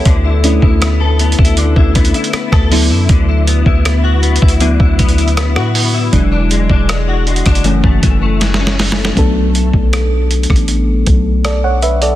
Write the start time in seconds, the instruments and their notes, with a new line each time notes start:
Already playing: clean electric guitar B3 E4 G4, fm electric piano A4
0.05 808-style bass D2, clean electric guitar D3, kick, closed hi-hat
0.24 clean electric guitar E4
0.43 fm electric piano A3 C#4 D4 E4, clean electric guitar B3, closed hi-hat
0.62 808-style bass D2, clean electric guitar E4, kick
0.81 clean electric guitar B3, cross-stick, closed hi-hat
1.00 clean electric guitar A4
1.19 clean electric guitar B3, closed hi-hat
1.32 closed hi-hat
1.38 808-style bass D2, clean electric guitar E4, kick
1.45 closed hi-hat
1.57 clean electric guitar D3, closed hi-hat
1.76 808-style bass D2, clean electric guitar E4, kick
1.95 clean electric guitar B3, kick, closed hi-hat
2.05 closed hi-hat
2.14 clean electric guitar E4, closed hi-hat
2.24 closed hi-hat
2.33 clean electric guitar B3, cross-stick, closed hi-hat
2.52 808-style bass D2, clean electric guitar A4, kick, cross-stick
2.71 clean electric guitar D3, fm electric piano F#3 B3 E4, open hi-hat
2.90 808-style bass F#2, clean electric guitar E4
3.09 808-style bass D2, clean electric guitar D3, kick, closed hi-hat
3.29 clean electric guitar E4
3.47 clean electric guitar B3, closed hi-hat
3.66 808-style bass D2, clean electric guitar E4, kick
3.85 clean electric guitar B3, cross-stick, closed hi-hat
4.04 clean electric guitar F#4
4.23 clean electric guitar B3, closed hi-hat
4.36 closed hi-hat
4.42 808-style bass D2, clean electric guitar E4, kick
4.48 closed hi-hat
4.60 clean electric guitar D3, fm electric piano F#3 B3 E4, closed hi-hat
4.79 808-style bass D2, clean electric guitar E4, kick
4.99 clean electric guitar B3, kick, closed hi-hat
5.09 closed hi-hat
5.18 clean electric guitar E4, closed hi-hat
5.28 closed hi-hat
5.37 clean electric guitar B3, cross-stick, closed hi-hat
5.56 808-style bass A2, clean electric guitar F#4, cross-stick
5.75 clean electric guitar B3, open hi-hat
5.94 clean electric guitar E4
6.12 808-style bass E1, clean electric guitar E3, fm electric piano F#3 G#3 D4, kick, closed hi-hat
6.32 clean electric guitar D4
6.51 clean electric guitar G#3, closed hi-hat
6.70 808-style bass E1, clean electric guitar D4, kick
6.89 clean electric guitar G#3, cross-stick, closed hi-hat
7.08 clean electric guitar F#4
7.27 clean electric guitar G#3, closed hi-hat
7.36 closed hi-hat
7.46 808-style bass F#1, clean electric guitar D4, kick, cross-stick, closed hi-hat
7.55 closed hi-hat
7.64 clean electric guitar F#2, fm electric piano E3 A3 C#4, closed hi-hat
7.84 808-style bass F#1, clean electric guitar A3, kick
8.03 clean electric guitar E3, kick, closed hi-hat
8.22 clean electric guitar A3
8.41 clean electric guitar E3, snare, closed hi-hat
8.54 snare
8.60 clean electric guitar C#4
8.67 snare
8.79 clean electric guitar E3, snare, open hi-hat
8.92 snare
8.97 clean electric guitar A3
9.05 snare
9.15 808-style bass B1, fm electric piano F#3 A3 B3 D4 A4, kick, closed hi-hat
9.55 closed hi-hat
9.73 808-style bass B1, kick
9.93 cross-stick, closed hi-hat
10.31 closed hi-hat
10.43 closed hi-hat
10.50 808-style bass A1, kick, cross-stick
10.56 closed hi-hat
10.68 closed hi-hat
11.06 808-style bass B1, kick, closed hi-hat
11.45 fm electric piano A4 D5, cross-stick, closed hi-hat
11.64 fm electric piano C#5 F#5
11.82 fm electric piano B4 E5, closed hi-hat
12.02 fm electric piano A4 D5, closed hi-hat